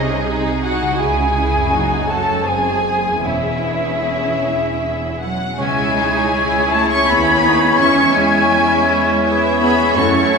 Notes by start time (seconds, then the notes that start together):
Already playing: C2 C3 G#3 C#4 D#4 G#4 D#5
0.28 D#4
0.62 D#4 F#4 F#5
0.81 C#3
0.86 G#3
0.91 E4
0.95 C#3 G#4 C#5 G#5
0.99 C#2 E4 G#5
1.36 E4
1.54 F#2
1.59 A3
1.64 F#4
1.68 F#2 C#5
1.72 F#1 D#4 F#4
2.08 C#4 A4 A5
2.28 F#2
2.33 G#3
2.38 G#4
2.42 C5 G#5
2.46 F#1 F#2 C4 G#4
2.88 C4
3.07 E2
3.11 G#3
3.16 G#4
3.20 C#5
3.24 E1 E2 C#4 E4 G#4 E5
5.20 F#3 F#5
5.58 C#2 C#3 E3 G#3 C#4 E4 G#4 C#5 E5 G#5 G#6
5.78 G#3
5.96 D#4 E4
6.16 C#5
6.33 E4 G#4 C#5
6.53 E5
6.71 A3 A5 C#6
6.88 C#4 E5 C#6
7.06 D#2 B3 E4 G#4 C#5 B5
7.26 C#5
7.42 D#4 E4
7.61 G#3
7.78 E2 E3 C#4 G#4 E5 C#6
7.97 G#3
8.14 G#3 E4 G#5
8.51 C#4 E4 G#4
8.71 E5
8.90 C#6
9.07 E5
9.24 B3 E4 G#4 E5
9.44 C#5
9.60 B3 E4 G#4 B5
9.80 G#3
9.96 F#2 E3 A3 C#4 E4 F#4 A4 C#5 C#6 A6
10.15 A3
10.33 E4